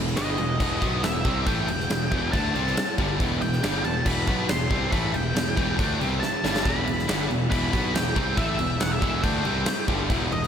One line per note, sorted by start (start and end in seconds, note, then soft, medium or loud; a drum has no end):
0.00 0.16 E1 medium
0.00 0.13 E2 medium
0.00 0.13 B2 medium
0.00 10.47 E3 medium
0.00 10.47 B3 medium
0.00 10.47 E4 medium
0.00 10.47 G4 medium
0.00 5.74 G5 medium
0.07 snare soft
0.16 0.37 G1 loud
0.16 0.38 G2 loud
0.16 0.38 D3 medium
0.16 0.38 G3 loud
0.16 1.03 D#5 medium
0.16 snare loud
0.16 crash medium
0.38 0.59 E1 medium
0.38 0.56 E2 medium
0.38 0.56 B2 medium
0.38 crash medium
0.60 0.80 E1 loud
0.60 0.81 E2 medium
0.60 0.80 B2 loud
0.60 0.81 E3 loud
0.60 kick loud
0.60 crash medium
0.81 1.02 B1 loud
0.81 1.02 B2 medium
0.81 1.03 F#3 medium
0.81 1.03 B3 loud
0.81 kick loud
0.81 crash medium
1.03 1.23 E1 medium
1.03 1.21 E2 medium
1.03 1.21 B2 medium
1.03 1.48 E5 medium
1.03 snare loud
1.03 crash medium
1.25 1.45 C2 loud
1.25 1.46 C3 loud
1.25 1.46 G3 loud
1.25 1.46 C4 loud
1.25 kick loud
1.25 crash medium
1.46 1.67 A1 loud
1.46 1.67 A2 loud
1.46 1.68 E3 loud
1.46 1.68 A3 loud
1.46 2.32 G5 loud
1.46 kick loud
1.46 crash medium
1.68 1.89 E1 medium
1.68 1.86 E2 medium
1.68 1.86 B2 medium
1.68 crash medium
1.80 snare soft
1.90 2.10 E1 medium
1.90 2.07 E2 medium
1.90 2.08 B2 medium
1.90 snare loud
1.90 crash medium
2.11 2.32 E1 loud
2.11 2.32 E2 loud
2.11 2.33 B2 loud
2.11 2.33 E3 medium
2.11 kick loud
2.11 crash medium
2.32 2.54 D2 medium
2.32 2.54 D3 loud
2.32 2.54 A3 loud
2.32 2.54 D4 loud
2.32 2.93 A5 loud
2.32 kick loud
2.32 crash medium
2.55 2.76 C2 loud
2.55 2.76 C3 loud
2.55 2.76 G3 medium
2.55 2.76 C4 loud
2.55 crash medium
2.67 snare soft
2.77 snare loud
2.77 crash medium
2.98 3.18 G1 loud
2.98 3.19 G2 medium
2.98 3.19 D3 loud
2.98 3.19 G3 loud
2.98 kick loud
2.98 crash medium
3.20 3.40 E1 loud
3.20 3.40 E2 loud
3.20 3.41 B2 loud
3.20 3.41 E3 loud
3.20 kick loud
3.20 crash medium
3.42 3.62 E1 medium
3.42 3.59 E2 medium
3.42 3.59 B2 medium
3.42 3.84 G5 medium
3.42 crash medium
3.53 snare soft
3.63 3.83 G1 loud
3.63 3.84 G2 loud
3.63 3.84 D3 loud
3.63 3.84 G3 loud
3.63 snare loud
3.63 crash medium
3.85 4.05 E1 medium
3.85 4.02 E2 medium
3.85 4.02 B2 medium
3.85 4.07 A5 loud
3.85 crash medium
4.05 4.26 E1 medium
4.05 4.26 E2 loud
4.05 4.26 B2 loud
4.05 4.27 E3 loud
4.05 4.49 B5 loud
4.05 kick loud
4.05 crash medium
4.27 4.48 B1 loud
4.27 4.48 B2 loud
4.27 4.48 F#3 medium
4.27 4.49 B3 loud
4.27 kick loud
4.27 crash medium
4.49 4.70 E1 medium
4.49 4.66 E2 medium
4.49 4.66 B2 medium
4.49 4.92 C6 loud
4.49 snare loud
4.49 crash medium
4.70 4.91 C2 loud
4.70 4.91 C3 loud
4.70 4.92 G3 loud
4.70 4.92 C4 loud
4.70 kick loud
4.70 crash medium
4.92 5.13 A1 medium
4.92 5.13 A2 loud
4.92 5.13 E3 loud
4.92 5.13 A3 loud
4.92 5.15 B5 loud
4.92 kick loud
4.92 crash medium
5.13 5.34 E1 medium
5.13 5.31 E2 medium
5.13 5.31 B2 medium
5.13 5.56 G5 medium
5.13 crash medium
5.35 5.56 E1 medium
5.35 5.52 E2 medium
5.35 5.52 B2 medium
5.35 snare loud
5.35 crash medium
5.56 5.77 E1 loud
5.56 5.78 E2 medium
5.56 5.78 B2 medium
5.56 5.78 E3 medium
5.56 5.97 G5 medium
5.56 kick loud
5.56 crash medium
5.78 5.99 D2 loud
5.78 5.99 D3 medium
5.78 6.00 A3 medium
5.78 6.00 D4 loud
5.78 10.47 A5 medium
5.78 kick loud
5.78 crash medium
6.00 6.21 C2 loud
6.00 6.21 C3 medium
6.00 6.21 G3 loud
6.00 6.21 C4 loud
6.00 crash medium
6.20 6.65 A5 medium
6.20 snare medium
6.44 6.64 G1 loud
6.44 6.64 G2 medium
6.44 6.64 D3 loud
6.44 6.65 G3 loud
6.44 snare loud
6.56 snare medium
6.64 6.85 E1 loud
6.64 6.84 E2 loud
6.64 6.85 B2 loud
6.64 6.86 E3 loud
6.64 7.25 B5 loud
6.64 kick loud
6.64 crash medium
6.86 7.07 E1 medium
6.86 7.03 E2 medium
6.86 7.03 B2 medium
6.86 crash medium
6.99 snare soft
7.08 7.29 G1 loud
7.08 7.29 G2 medium
7.08 7.29 D3 loud
7.08 7.29 G3 loud
7.08 snare loud
7.08 crash medium
7.30 7.50 E1 medium
7.30 7.47 E2 medium
7.30 7.47 B2 medium
7.30 crash medium
7.50 7.71 E1 medium
7.50 7.72 E2 loud
7.50 7.71 B2 loud
7.50 7.72 E3 medium
7.50 7.95 B5 loud
7.50 kick loud
7.50 crash medium
7.72 7.93 B1 loud
7.72 7.93 B2 medium
7.72 7.93 F#3 medium
7.72 7.94 B3 loud
7.72 kick loud
7.72 crash medium
7.94 8.15 E1 medium
7.94 8.11 E2 medium
7.94 8.11 B2 medium
7.94 8.39 G5 loud
7.94 snare loud
7.94 crash medium
8.16 8.36 C2 loud
8.16 8.36 C3 loud
8.16 8.37 G3 medium
8.16 8.37 C4 loud
8.16 kick loud
8.16 crash medium
8.36 8.57 A1 medium
8.36 8.58 A2 loud
8.36 8.58 E3 medium
8.36 8.58 A3 loud
8.36 8.82 E5 loud
8.36 kick loud
8.36 crash medium
8.59 8.79 E1 medium
8.59 8.76 E2 medium
8.59 8.76 B2 medium
8.59 crash medium
8.80 9.01 E1 medium
8.80 8.97 E2 medium
8.80 8.97 B2 medium
8.80 8.92 F#5 medium
8.80 snare loud
8.80 crash medium
8.92 9.25 E5 medium
9.01 9.22 E1 loud
9.01 9.22 E2 medium
9.01 9.22 B2 medium
9.01 9.23 E3 loud
9.01 kick loud
9.01 crash medium
9.23 9.44 D2 medium
9.23 9.44 D3 medium
9.23 9.44 A3 medium
9.23 9.45 D4 loud
9.23 9.84 G5 medium
9.23 kick loud
9.23 crash medium
9.45 9.65 C2 loud
9.45 9.66 C3 medium
9.45 9.66 G3 loud
9.45 9.66 C4 loud
9.45 crash medium
9.66 snare loud
9.66 crash medium
9.88 10.08 G1 loud
9.88 10.09 G2 loud
9.88 10.09 D3 loud
9.88 10.09 G3 loud
9.88 kick loud
9.88 crash medium
10.10 10.30 E1 loud
10.10 10.30 E2 medium
10.10 10.31 B2 loud
10.10 10.31 E3 loud
10.10 kick loud
10.10 crash medium
10.31 10.47 E1 medium
10.31 10.47 E2 medium
10.31 10.47 B2 medium
10.31 10.47 D#5 medium
10.31 crash medium
10.43 snare soft